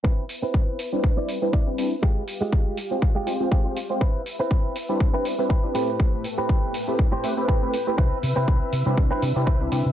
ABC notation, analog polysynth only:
X:1
M:4/4
L:1/16
Q:"Swing 16ths" 1/4=121
K:C
V:1 name="Analog polysynth"
z6 z [G,CDEB]4 [G,CDEB] z [G,CDEB] [G,CDEB] z | z6 z [_A,CFGc]2 z [A,CFGc] [A,CFGc] [A,CFG] [A,CFGc] z [A,CFGc] | z6 z [G,CDEB]4 [G,CDEB] z [G,CDEB] [A,CEGB] z | z6 z [A,CEGB]2 z [A,CEGB] [A,CEGB] [A,CE] [A,CEGB] z [A,CEGB] |
z6 z [G,CDEB]4 [G,CDEB] z [G,CDEB] [G,CDEB] z |]